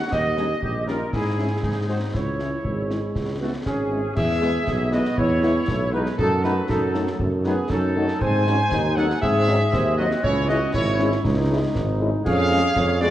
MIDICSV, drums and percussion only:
0, 0, Header, 1, 2, 480
1, 0, Start_track
1, 0, Key_signature, 4, "minor"
1, 0, Tempo, 505902
1, 115, Time_signature, 2, 2, 24, 8
1, 12432, End_track
2, 0, Start_track
2, 0, Title_t, "Drums"
2, 116, Note_on_c, 9, 35, 73
2, 116, Note_on_c, 9, 38, 66
2, 116, Note_on_c, 9, 49, 29
2, 211, Note_off_c, 9, 35, 0
2, 211, Note_off_c, 9, 38, 0
2, 211, Note_off_c, 9, 49, 0
2, 352, Note_on_c, 9, 38, 47
2, 447, Note_off_c, 9, 38, 0
2, 594, Note_on_c, 9, 35, 63
2, 688, Note_off_c, 9, 35, 0
2, 836, Note_on_c, 9, 38, 45
2, 930, Note_off_c, 9, 38, 0
2, 1074, Note_on_c, 9, 35, 65
2, 1074, Note_on_c, 9, 38, 54
2, 1169, Note_off_c, 9, 35, 0
2, 1169, Note_off_c, 9, 38, 0
2, 1549, Note_on_c, 9, 35, 66
2, 1549, Note_on_c, 9, 38, 55
2, 1644, Note_off_c, 9, 35, 0
2, 1644, Note_off_c, 9, 38, 0
2, 2034, Note_on_c, 9, 35, 68
2, 2034, Note_on_c, 9, 38, 58
2, 2129, Note_off_c, 9, 35, 0
2, 2129, Note_off_c, 9, 38, 0
2, 2272, Note_on_c, 9, 38, 45
2, 2367, Note_off_c, 9, 38, 0
2, 2512, Note_on_c, 9, 35, 57
2, 2607, Note_off_c, 9, 35, 0
2, 2756, Note_on_c, 9, 38, 51
2, 2851, Note_off_c, 9, 38, 0
2, 2991, Note_on_c, 9, 35, 69
2, 2991, Note_on_c, 9, 38, 50
2, 3086, Note_off_c, 9, 35, 0
2, 3086, Note_off_c, 9, 38, 0
2, 3472, Note_on_c, 9, 35, 60
2, 3472, Note_on_c, 9, 38, 63
2, 3567, Note_off_c, 9, 35, 0
2, 3567, Note_off_c, 9, 38, 0
2, 3954, Note_on_c, 9, 35, 81
2, 3954, Note_on_c, 9, 49, 49
2, 4049, Note_off_c, 9, 35, 0
2, 4049, Note_off_c, 9, 49, 0
2, 4195, Note_on_c, 9, 38, 53
2, 4290, Note_off_c, 9, 38, 0
2, 4437, Note_on_c, 9, 35, 72
2, 4437, Note_on_c, 9, 38, 66
2, 4531, Note_off_c, 9, 35, 0
2, 4531, Note_off_c, 9, 38, 0
2, 4673, Note_on_c, 9, 38, 56
2, 4767, Note_off_c, 9, 38, 0
2, 4793, Note_on_c, 9, 38, 54
2, 4888, Note_off_c, 9, 38, 0
2, 4913, Note_on_c, 9, 35, 76
2, 5007, Note_off_c, 9, 35, 0
2, 5152, Note_on_c, 9, 38, 51
2, 5247, Note_off_c, 9, 38, 0
2, 5390, Note_on_c, 9, 35, 73
2, 5390, Note_on_c, 9, 38, 74
2, 5485, Note_off_c, 9, 35, 0
2, 5485, Note_off_c, 9, 38, 0
2, 5750, Note_on_c, 9, 38, 53
2, 5845, Note_off_c, 9, 38, 0
2, 5870, Note_on_c, 9, 35, 81
2, 5965, Note_off_c, 9, 35, 0
2, 6113, Note_on_c, 9, 38, 49
2, 6208, Note_off_c, 9, 38, 0
2, 6350, Note_on_c, 9, 35, 77
2, 6350, Note_on_c, 9, 38, 72
2, 6445, Note_off_c, 9, 35, 0
2, 6445, Note_off_c, 9, 38, 0
2, 6590, Note_on_c, 9, 38, 57
2, 6684, Note_off_c, 9, 38, 0
2, 6710, Note_on_c, 9, 38, 54
2, 6805, Note_off_c, 9, 38, 0
2, 6826, Note_on_c, 9, 35, 84
2, 6921, Note_off_c, 9, 35, 0
2, 7064, Note_on_c, 9, 38, 50
2, 7158, Note_off_c, 9, 38, 0
2, 7304, Note_on_c, 9, 35, 70
2, 7304, Note_on_c, 9, 38, 71
2, 7398, Note_off_c, 9, 35, 0
2, 7398, Note_off_c, 9, 38, 0
2, 7668, Note_on_c, 9, 38, 55
2, 7762, Note_off_c, 9, 38, 0
2, 7792, Note_on_c, 9, 35, 85
2, 7792, Note_on_c, 9, 49, 28
2, 7887, Note_off_c, 9, 35, 0
2, 7887, Note_off_c, 9, 49, 0
2, 8034, Note_on_c, 9, 38, 54
2, 8129, Note_off_c, 9, 38, 0
2, 8271, Note_on_c, 9, 35, 75
2, 8271, Note_on_c, 9, 38, 70
2, 8366, Note_off_c, 9, 35, 0
2, 8366, Note_off_c, 9, 38, 0
2, 8514, Note_on_c, 9, 38, 51
2, 8609, Note_off_c, 9, 38, 0
2, 8634, Note_on_c, 9, 38, 59
2, 8729, Note_off_c, 9, 38, 0
2, 8752, Note_on_c, 9, 35, 80
2, 8847, Note_off_c, 9, 35, 0
2, 8994, Note_on_c, 9, 38, 53
2, 9089, Note_off_c, 9, 38, 0
2, 9235, Note_on_c, 9, 35, 74
2, 9235, Note_on_c, 9, 38, 72
2, 9330, Note_off_c, 9, 35, 0
2, 9330, Note_off_c, 9, 38, 0
2, 9592, Note_on_c, 9, 38, 55
2, 9687, Note_off_c, 9, 38, 0
2, 9713, Note_on_c, 9, 35, 82
2, 9808, Note_off_c, 9, 35, 0
2, 9954, Note_on_c, 9, 38, 52
2, 10049, Note_off_c, 9, 38, 0
2, 10191, Note_on_c, 9, 35, 73
2, 10191, Note_on_c, 9, 38, 70
2, 10286, Note_off_c, 9, 35, 0
2, 10286, Note_off_c, 9, 38, 0
2, 10433, Note_on_c, 9, 38, 56
2, 10528, Note_off_c, 9, 38, 0
2, 10550, Note_on_c, 9, 38, 54
2, 10644, Note_off_c, 9, 38, 0
2, 10672, Note_on_c, 9, 35, 88
2, 10672, Note_on_c, 9, 38, 63
2, 10767, Note_off_c, 9, 35, 0
2, 10767, Note_off_c, 9, 38, 0
2, 11154, Note_on_c, 9, 35, 70
2, 11154, Note_on_c, 9, 38, 72
2, 11249, Note_off_c, 9, 35, 0
2, 11249, Note_off_c, 9, 38, 0
2, 11634, Note_on_c, 9, 35, 80
2, 11634, Note_on_c, 9, 49, 54
2, 11729, Note_off_c, 9, 35, 0
2, 11729, Note_off_c, 9, 49, 0
2, 11873, Note_on_c, 9, 38, 55
2, 11967, Note_off_c, 9, 38, 0
2, 12108, Note_on_c, 9, 35, 73
2, 12108, Note_on_c, 9, 38, 78
2, 12203, Note_off_c, 9, 35, 0
2, 12203, Note_off_c, 9, 38, 0
2, 12347, Note_on_c, 9, 38, 55
2, 12432, Note_off_c, 9, 38, 0
2, 12432, End_track
0, 0, End_of_file